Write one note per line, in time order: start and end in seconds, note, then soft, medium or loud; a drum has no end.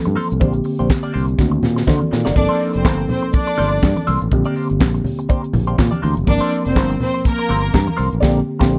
0.00 0.43 F3 medium
0.00 0.41 A#3 medium
0.00 0.42 C4 medium
0.00 0.42 A4 medium
0.05 0.15 G2 medium
0.05 muted clean electric guitar stroke soft
0.05 closed hi-hat soft
0.05 high conga medium
0.16 0.30 A#3 medium
0.16 0.29 F4 medium
0.16 0.29 A4 medium
0.16 0.28 C5 medium
0.16 open hi-hat medium
0.30 0.41 C2 medium
0.30 muted clean electric guitar stroke soft
0.30 closed hi-hat soft
0.40 0.60 A#1 medium
0.40 1.36 D3 medium
0.40 0.55 A#3 medium
0.40 1.37 A#3 medium
0.40 1.37 C4 medium
0.40 0.54 D4 medium
0.40 0.53 G4 medium
0.40 1.38 G4 medium
0.40 0.53 C5 medium
0.40 kick loud
0.40 closed hi-hat medium
0.40 muted conga medium
0.53 muted clean electric guitar stroke soft
0.53 closed hi-hat soft
0.64 muted clean electric guitar stroke soft
0.64 open hi-hat medium
0.79 0.88 A#1 medium
0.79 0.88 A#3 soft
0.79 0.88 D4 soft
0.79 0.88 G4 soft
0.79 0.88 C5 medium
0.79 closed hi-hat medium
0.90 kick loud
0.90 snare loud
0.90 clap medium
0.90 high conga medium
1.03 1.11 A#3 medium
1.03 1.12 D4 soft
1.03 1.12 G4 soft
1.03 1.12 D5 medium
1.03 closed hi-hat medium
1.13 1.34 C2 medium
1.13 1.28 A#3 medium
1.13 1.27 D4 medium
1.13 1.27 G4 medium
1.13 1.26 C5 medium
1.13 open hi-hat medium
1.27 muted clean electric guitar stroke soft
1.27 closed hi-hat soft
1.38 1.58 D2 loud
1.38 2.34 D#3 medium
1.38 2.34 A#3 medium
1.38 2.35 C4 medium
1.38 1.87 F#4 medium
1.38 muted clean electric guitar stroke soft
1.38 kick loud
1.38 snare soft
1.38 muted conga soft
1.51 muted clean electric guitar stroke soft
1.63 1.82 A#2 medium
1.63 snare medium
1.63 muted conga medium
1.63 low conga medium
1.76 muted clean electric guitar stroke soft
1.76 snare medium
1.87 1.98 D3 medium
1.87 2.01 A#3 medium
1.87 2.01 D#4 medium
1.87 2.00 F#4 medium
1.87 2.11 A4 medium
1.87 2.00 C5 medium
1.87 2.11 D5 medium
1.87 kick loud
1.87 snare medium
1.87 high conga medium
2.01 muted clean electric guitar stroke soft
2.01 high conga medium
2.11 2.23 A#2 medium
2.11 2.59 D#4 medium
2.11 2.59 A#4 medium
2.11 muted clean electric guitar stroke soft
2.11 snare medium
2.25 2.35 F#1 medium
2.25 2.35 A#3 soft
2.25 2.34 D#4 medium
2.25 2.34 F#4 medium
2.25 2.34 D5 medium
2.25 snare medium
2.35 2.47 G1 medium
2.35 4.28 F3 medium
2.35 4.28 A#3 medium
2.35 4.29 C4 medium
2.35 2.55 D4 loud
2.35 4.29 A4 medium
2.35 2.56 D5 loud
2.35 kick loud
2.35 crash medium
2.35 muted conga medium
2.48 2.58 A#3 medium
2.48 2.59 F4 medium
2.48 2.59 A4 medium
2.48 2.59 C5 medium
2.48 closed hi-hat soft
2.59 2.71 A#3 soft
2.59 2.72 F4 soft
2.59 2.72 A4 medium
2.59 2.72 C5 medium
2.59 open hi-hat medium
2.73 2.85 F1 medium
2.73 3.07 C4 medium
2.73 3.07 C5 medium
2.73 muted clean electric guitar stroke soft
2.73 closed hi-hat medium
2.84 3.04 G1 medium
2.84 muted clean electric guitar stroke soft
2.84 kick loud
2.84 snare loud
2.84 clap loud
2.84 high conga medium
2.98 muted clean electric guitar stroke soft
2.98 closed hi-hat soft
3.09 3.29 C4 medium
3.09 3.29 C5 medium
3.09 open hi-hat medium
3.09 low conga medium
3.22 muted clean electric guitar stroke soft
3.22 closed hi-hat soft
3.33 4.03 D4 loud
3.33 4.03 D5 loud
3.33 kick loud
3.33 closed hi-hat medium
3.33 muted conga soft
3.47 muted clean electric guitar stroke soft
3.47 closed hi-hat soft
3.57 3.78 G1 medium
3.57 3.72 A#3 medium
3.57 3.72 F4 medium
3.57 3.71 A4 medium
3.57 3.71 C5 loud
3.57 open hi-hat medium
3.57 muted conga medium
3.71 muted clean electric guitar stroke soft
3.71 closed hi-hat soft
3.83 3.93 G2 loud
3.83 muted clean electric guitar stroke soft
3.83 kick loud
3.83 snare medium
3.83 clap medium
3.83 high conga medium
3.96 muted clean electric guitar stroke medium
3.96 closed hi-hat soft
3.96 high conga medium
4.07 4.18 C2 medium
4.07 4.21 A#3 medium
4.07 4.21 F4 medium
4.07 4.21 A4 medium
4.07 4.20 C5 medium
4.07 open hi-hat medium
4.07 high conga medium
4.21 4.30 A1 medium
4.21 muted clean electric guitar stroke soft
4.21 closed hi-hat soft
4.31 4.42 A#1 loud
4.31 6.23 D3 medium
4.31 6.23 A#3 medium
4.31 6.24 C4 medium
4.31 6.24 G4 medium
4.31 muted clean electric guitar stroke soft
4.31 kick medium
4.31 closed hi-hat medium
4.31 muted conga medium
4.45 4.55 A#3 medium
4.45 4.55 D4 medium
4.45 4.55 G4 medium
4.45 4.56 D5 medium
4.45 closed hi-hat medium
4.55 4.67 A#3 medium
4.55 4.67 D4 soft
4.55 4.68 G4 medium
4.55 4.68 C5 medium
4.55 open hi-hat medium
4.70 4.79 G1 medium
4.70 closed hi-hat medium
4.80 4.99 A#1 medium
4.80 muted clean electric guitar stroke soft
4.80 kick loud
4.80 snare loud
4.80 clap loud
4.80 high conga medium
4.94 muted clean electric guitar stroke soft
4.94 closed hi-hat soft
5.04 open hi-hat medium
5.04 low conga medium
5.19 muted clean electric guitar stroke soft
5.19 closed hi-hat soft
5.29 5.43 A#3 medium
5.29 5.42 D4 medium
5.29 5.42 G4 medium
5.29 5.42 C5 medium
5.29 kick loud
5.29 closed hi-hat medium
5.43 muted clean electric guitar stroke medium
5.43 closed hi-hat soft
5.53 5.73 A#1 medium
5.53 muted clean electric guitar stroke soft
5.53 open hi-hat medium
5.53 muted conga medium
5.53 low conga medium
5.67 5.76 A#3 medium
5.67 5.76 D4 medium
5.67 5.76 G4 medium
5.67 5.76 C5 medium
5.67 closed hi-hat soft
5.77 5.89 A#2 loud
5.77 muted clean electric guitar stroke soft
5.77 kick loud
5.77 snare loud
5.77 clap medium
5.77 high conga medium
5.91 6.01 A#3 soft
5.91 6.01 D4 medium
5.91 6.01 G4 medium
5.91 6.00 D5 medium
5.91 closed hi-hat soft
5.91 high conga medium
6.02 6.14 D2 medium
6.02 6.17 A#3 medium
6.02 6.15 D4 medium
6.02 6.15 G4 medium
6.02 6.15 C5 medium
6.02 open hi-hat medium
6.02 high conga medium
6.16 6.25 F1 medium
6.16 muted clean electric guitar stroke medium
6.16 closed hi-hat soft
6.26 6.38 G1 loud
6.26 8.18 F3 medium
6.26 8.19 A#3 medium
6.26 8.19 C4 medium
6.26 6.47 D4 loud
6.26 8.20 A#4 medium
6.26 6.47 D5 loud
6.26 muted clean electric guitar stroke soft
6.26 kick medium
6.26 closed hi-hat medium
6.26 muted conga medium
6.40 6.50 A#3 medium
6.40 6.50 F4 medium
6.40 6.50 A4 medium
6.40 6.51 C5 medium
6.40 closed hi-hat medium
6.50 6.63 A#3 soft
6.50 6.63 F4 medium
6.50 6.63 A4 medium
6.50 6.63 C5 medium
6.50 open hi-hat medium
6.65 6.76 F1 medium
6.65 6.99 C4 medium
6.65 6.99 C5 loud
6.65 muted clean electric guitar stroke soft
6.65 closed hi-hat medium
6.76 6.95 G1 medium
6.76 muted clean electric guitar stroke soft
6.76 kick loud
6.76 snare loud
6.76 clap medium
6.76 high conga medium
6.90 muted clean electric guitar stroke soft
6.90 closed hi-hat medium
7.00 7.21 C4 medium
7.00 7.21 C5 loud
7.00 open hi-hat medium
7.00 low conga medium
7.14 muted clean electric guitar stroke soft
7.14 closed hi-hat soft
7.24 7.95 A#3 loud
7.24 7.95 A#4 loud
7.24 kick loud
7.24 closed hi-hat medium
7.24 muted conga soft
7.39 muted clean electric guitar stroke soft
7.39 closed hi-hat soft
7.48 7.69 G1 medium
7.48 7.64 A#3 medium
7.48 7.63 F4 medium
7.48 7.63 A4 medium
7.48 7.62 C5 medium
7.48 open hi-hat medium
7.48 muted conga medium
7.63 muted clean electric guitar stroke soft
7.63 closed hi-hat medium
7.74 7.85 G2 loud
7.74 muted clean electric guitar stroke soft
7.74 kick loud
7.74 snare loud
7.74 clap medium
7.74 high conga medium
7.87 muted clean electric guitar stroke medium
7.87 closed hi-hat medium
7.87 high conga medium
7.97 8.09 C2 medium
7.97 8.12 A#3 medium
7.97 8.10 F4 medium
7.97 8.10 A4 medium
7.97 8.09 C5 loud
7.97 open hi-hat medium
7.97 high conga medium
8.10 8.21 A1 medium
8.10 muted clean electric guitar stroke soft
8.10 closed hi-hat soft
8.20 8.40 A#1 loud
8.20 8.39 D3 loud
8.20 8.39 A#3 loud
8.20 8.40 A#3 loud
8.20 8.40 C4 loud
8.20 8.39 D4 loud
8.20 8.39 G4 loud
8.20 8.41 G4 loud
8.20 8.39 D5 loud
8.20 kick loud
8.20 snare loud
8.20 crash medium
8.59 8.77 A#1 loud
8.59 8.76 D3 loud
8.59 8.76 A#3 medium
8.59 8.77 A#3 medium
8.59 8.77 C4 loud
8.59 8.77 D4 medium
8.59 8.77 G4 loud
8.59 8.78 G4 loud
8.59 8.77 C5 medium
8.59 kick loud
8.59 snare loud